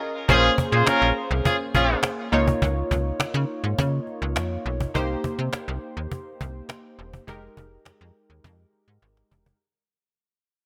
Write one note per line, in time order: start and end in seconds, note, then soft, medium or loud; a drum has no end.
0.28 0.50 A#1 loud
0.28 2.28 A#3 medium
0.28 2.29 C#4 medium
0.28 0.52 C#4 loud
0.28 0.52 F4 loud
0.28 0.52 G#4 loud
0.28 2.29 G#4 medium
0.28 2.29 C5 medium
0.28 cajon bass loud
0.58 cajon bass loud
0.72 0.83 A#2 medium
0.72 0.84 F4 loud
0.72 0.84 G#4 loud
0.72 0.84 C5 loud
0.87 1.10 C#4 loud
0.87 1.10 F4 loud
0.87 1.10 A#4 loud
0.87 cajon slap medium
0.87 cajon slap loud
1.02 1.12 A#1 medium
1.31 1.41 C2 medium
1.45 1.57 C#4 medium
1.45 1.57 F4 medium
1.45 1.57 G#4 loud
1.45 cajon bass loud
1.75 1.96 A#1 loud
1.75 1.98 C#4 loud
1.75 1.98 F4 loud
1.75 1.98 G#4 loud
1.75 cajon bass medium
2.03 cajon slap medium
2.03 cajon slap loud
2.32 2.54 C#2 loud
2.32 4.91 A#3 medium
2.32 4.91 D#4 medium
2.32 4.91 F4 medium
2.32 4.91 C#5 medium
2.47 cajon bass loud
2.62 2.83 C#2 loud
2.62 cajon bass loud
2.77 cajon slap soft
2.91 3.12 C#2 loud
2.91 cajon bass loud
3.20 3.26 C#3 soft
3.20 cajon slap medium
3.20 cajon slap loud
3.34 3.45 C#3 loud
3.64 3.74 G#2 medium
3.79 4.00 C#3 loud
3.79 cajon bass loud
4.07 cajon slap soft
4.22 4.38 C#2 medium
4.36 4.58 F2 medium
4.36 cajon slap medium
4.36 cajon slap loud
4.66 4.87 B1 medium
4.66 cajon slap soft
4.81 cajon bass loud
4.94 5.16 C2 loud
4.94 7.24 A#3 medium
4.94 7.24 D#4 medium
4.94 7.24 G4 medium
4.94 7.24 C5 medium
4.94 cajon bass loud
5.10 cajon slap soft
5.24 cajon bass loud
5.39 5.49 C3 medium
5.53 cajon slap medium
5.53 cajon slap loud
5.68 5.79 C2 medium
5.97 6.07 D#2 medium
6.12 cajon bass loud
6.41 6.62 C2 loud
6.41 cajon bass medium
6.69 cajon slap medium
6.69 cajon slap loud
6.99 7.20 E1 medium
6.99 cajon slap soft
7.13 cajon bass loud
7.27 7.49 F1 loud
7.27 9.57 G#3 medium
7.27 9.57 D#4 medium
7.27 9.57 G4 medium
7.27 9.57 A#4 medium
7.27 cajon bass loud
7.42 cajon slap soft
7.57 7.78 F1 medium
7.57 cajon bass medium
7.85 7.92 F2 soft
7.85 cajon slap medium
7.85 cajon slap loud
8.01 8.12 F2 medium
8.30 8.40 D#2 medium
8.44 8.66 F2 loud
8.44 cajon bass loud
8.73 cajon slap soft
8.88 8.98 G#2 medium
9.02 9.24 G#1 medium
9.02 cajon slap medium
9.17 cajon slap medium
9.31 9.53 E1 medium
9.31 cajon bass medium
9.46 cajon bass medium